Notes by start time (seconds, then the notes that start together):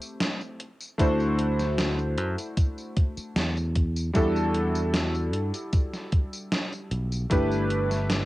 Already playing: A3 C4 E4 G4 C5
0.02 tambourine
0.20 snare, closed hi-hat, tambourine
0.41 tambourine
0.60 closed hi-hat
0.81 tambourine
0.98 D2 A3 D4 E4 F#4 C5, kick, closed hi-hat, tambourine
1.20 tambourine
1.39 closed hi-hat
1.59 snare, tambourine
1.78 snare, closed hi-hat, tambourine
1.99 tambourine
2.18 F#2, closed hi-hat
2.38 closed hi-hat, tambourine
2.57 kick, closed hi-hat, tambourine
2.78 tambourine
2.97 kick, closed hi-hat
3.17 muted fingered electric bass stroke, tambourine
3.36 E2, snare, closed hi-hat, tambourine
3.57 tambourine
3.75 kick, closed hi-hat
3.96 tambourine
4.13 E2 G3 D4 E4 F#4 A4, kick, closed hi-hat, tambourine
4.36 tambourine
4.54 closed hi-hat
4.75 tambourine
4.94 snare, closed hi-hat, tambourine
5.15 tambourine
5.33 G2, closed hi-hat
5.54 closed hi-hat, tambourine
5.73 kick, closed hi-hat, tambourine
5.94 snare, tambourine
6.12 kick, closed hi-hat
6.33 tambourine
6.52 snare, closed hi-hat, tambourine
6.73 tambourine
6.91 B1, closed hi-hat
7.12 tambourine
7.30 G1 A3 D4 E4 G4 B4, kick, closed hi-hat, tambourine
7.51 tambourine
7.70 closed hi-hat
7.91 snare, tambourine
8.10 snare, closed hi-hat, tambourine